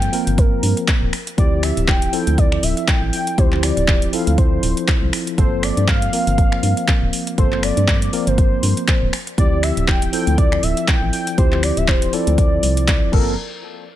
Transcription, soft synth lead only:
Already playing: G5
0.38 A#4
1.38 D5
1.63 E5
1.88 G5
2.13 G5
2.38 D5
2.63 E5
2.88 G5
3.13 G5
3.38 C5
3.63 D5
4.13 F5
4.38 C5
5.38 C5
5.63 D5
5.88 F5
6.13 F5
7.38 C5
7.63 D5
8.27 C5
9.38 D5
9.63 E5
9.88 G5
10.13 G5
10.38 D5
10.63 E5
10.88 G5
11.13 G5
11.38 C5
11.63 D5
11.77 E5
11.88 C5
12.13 D5
13.13 A#4

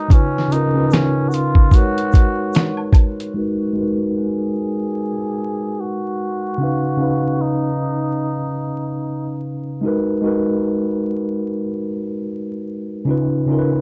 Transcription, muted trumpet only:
Already playing: D#4
0.13 C#4
0.52 D#4
0.93 C#4
1.28 F#4
1.34 F4
1.75 F#4
4.17 G#4
5.80 F#4
7.41 D#4

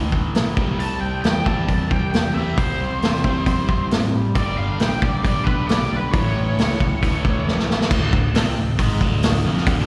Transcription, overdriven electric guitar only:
Already playing: A2 E3 A3
0.57 C3 G3 C4
1.46 C3 G3 C4
2.34 C3 G3 C4
3.24 C3 G3 C4
4.36 G2 D3 G3
5.24 G2 D3 G3
6.13 A2 E3 A3
7.02 A2 E3 A3
7.90 D2 D3
8.13 D2
8.34 C3 C4
8.57 D2
8.79 G#2 G#3
9.01 D2 D3
9.45 F2 F3
9.67 D2 D3

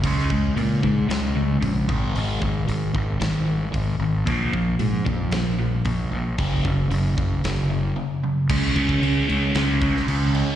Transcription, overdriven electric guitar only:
0.03 C#3 G#3 C#4
0.31 C#3 G#3
0.57 C#3 G#3
0.82 C#3 G#3
1.09 C#3 G#3
1.36 C#3 G#3
1.61 C#3 G#3
1.88 G#2 D#3 G#3
2.14 G#2 D#3 G#3
2.41 G#2 D#3
2.67 G#2 D#3
2.94 G#2 D#3
3.20 G#2 D#3
3.45 G#2 D#3
3.73 G#2 D#3
4.00 G#2 D#3
4.25 A#2 F3 A#3
4.53 A#2 F3
4.79 A#2 F3
5.05 A#2 F3
5.32 A#2 F3
5.59 A#2 F3
5.85 A#2 F3
6.12 A#2 F3
6.38 F#2 C#3 F#3
6.65 F#2 C#3
6.90 F#2 C#3
7.17 F#2 C#3
7.45 F#2 C#3
7.70 F#2 C#3
7.96 F#2 C#3
8.24 F#2 C#3
8.50 C#3 G#3 C#4
8.76 C#3 G#3 C#4
9.02 C#3 G#3 C#4
9.28 C#3 G#3 C#4
9.55 C#3 G#3 C#4
9.82 C#3 G#3 C#4
10.07 C#3 G#3 C#4
10.34 C#3 G#3 C#4

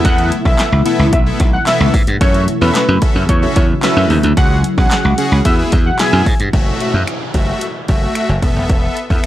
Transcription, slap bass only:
0.05 E2
0.45 B1
0.72 C#2
0.99 C#2
1.13 B1
1.40 B1
1.80 C#2
1.94 G#2
2.07 G2
2.21 F#2
2.61 E2
2.88 F#2
3.16 F#2
3.29 E2
3.56 E2
3.97 F#2
4.10 D#2
4.24 D2
4.37 C#2
4.78 B1
5.05 C#2
5.32 C#2
5.45 E2
5.73 E2
6.13 F#2
6.26 G#2
6.40 G2
6.53 F#1
6.94 F#2
7.34 F#1
7.89 F#1
8.29 F#1
8.42 E1
8.56 F1
8.70 E1
9.10 E2

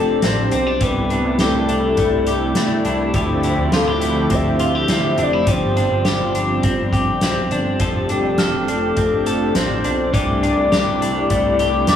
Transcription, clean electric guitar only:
Already playing: F3 C4 D4 A4
0.23 C4
0.52 C4
0.67 D4
0.81 E3 G4
1.11 D4
1.40 G4
1.69 D4
1.99 A3
2.27 G4
2.56 A3
2.85 D4
3.14 F3 G4
3.44 E4
3.73 F4
3.88 G4
4.02 E4
4.31 C4
4.60 F4
4.75 G4
4.89 C4
5.19 D4
5.33 E4
5.47 F3 G4
5.77 D4
6.05 G4
6.35 D4
6.64 C4
6.93 G4
7.23 C4
7.52 D4
7.81 F3 A4
8.10 D4
8.39 A4
8.68 D4
8.98 C4
9.27 A4
9.56 C4
9.85 D4
10.14 E3 G4
10.43 D4
10.72 G4
11.02 D4
11.30 A3
11.60 G4
11.89 A3

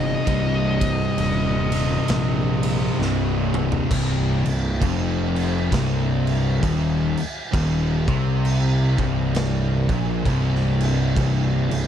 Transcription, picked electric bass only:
Already playing: G1
0.27 C1
1.17 D#1
2.09 A#1
2.99 C1
3.91 C1
4.45 C1
4.82 F1
5.73 C1
6.63 D#1
7.54 D#1
8.08 C2
8.99 C1
9.89 A#1
10.26 C1
11.16 C1
11.71 C1

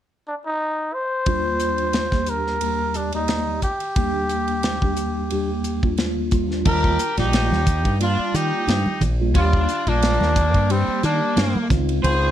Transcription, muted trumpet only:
0.27 D4
0.46 D#4
0.94 C5
2.30 A#4
2.96 D4
3.15 D#4
3.63 G4
6.67 A#4
7.19 G4
8.02 F4
8.36 G4
9.37 F4
9.89 D4
10.71 C4
11.05 D4
12.04 C5

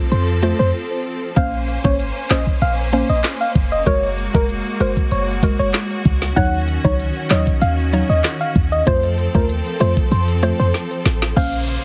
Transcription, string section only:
Already playing: F3 C4 A4
1.36 A#3 C#4 C5
3.87 G#3 F#4
6.37 D#3 C#4
8.87 F3 C4 A4
11.37 C#3 A#3 C5

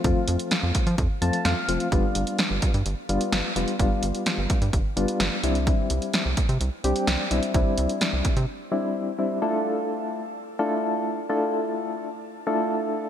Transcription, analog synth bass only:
0.04 F2
0.28 F2
0.63 F2
0.87 F3
0.98 F2
1.22 F2
1.45 F2
1.68 F1
1.92 G1
2.15 G1
2.51 G1
2.74 G2
2.86 G1
3.09 G1
3.33 G1
3.56 F1
3.79 G1
4.03 G1
4.38 G1
4.62 G2
4.73 G1
4.97 G1
5.20 G1
5.43 C2
5.90 C2
6.26 C2
6.49 C3
6.61 C2
6.84 C2
7.08 C2
7.31 B1
7.54 C2
7.78 C2
8.13 C2
8.37 C3

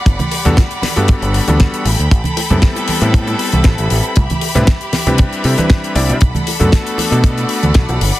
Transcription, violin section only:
Already playing: G3 D5 F#5 B5
1.85 A4 G5
4.17 G4 E5
6.21 A4 D5 F#5
8.01 G3

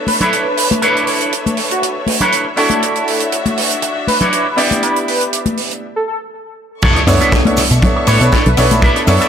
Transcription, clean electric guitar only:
0.20 D4 E4 A4 B4 C#5
0.71 muted clean electric guitar stroke
0.82 D4 E4 A4 B4 C#5
1.82 muted clean electric guitar stroke
1.96 muted clean electric guitar stroke
2.20 D4 E4 A4 B4 C#5
2.57 D4 E4 F#4 C#5
3.82 muted clean electric guitar stroke
3.96 muted clean electric guitar stroke
4.20 D4 E4 F#4 C#5
4.57 E4 G4 D5
6.82 D4 E4 A4 C#5
7.21 D4 E4 A4 E5
7.46 muted clean electric guitar stroke
7.96 muted clean electric guitar stroke
8.08 D4 E4 A4 C#5
8.32 D4 E4 A4 C#5
8.58 muted clean electric guitar stroke
8.82 D4 E4 A4 E5
9.21 D4 E4 A4 E5

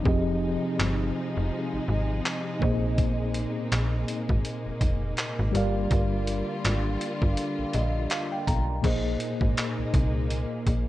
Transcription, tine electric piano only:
0.03 F3 C4 G4
0.07 G#4 D#5
2.59 A#2 A#3 G#4
2.63 C5 D#5
5.52 G3 G4 A#4
5.56 D5 F5
7.74 D#5
8.11 F5
8.32 G5
8.47 A#5
8.81 A#2 A#3 G#4
8.85 C5 D#5

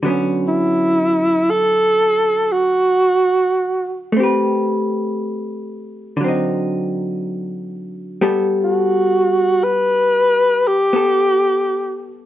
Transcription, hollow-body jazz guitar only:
0.03 D3 F#3 B3
0.08 C#4
4.13 A3
4.17 C4 G4
4.24 B4
6.17 D3 F#3
6.24 C4 D#4
8.21 G3 B3 A4
10.93 B3 A4

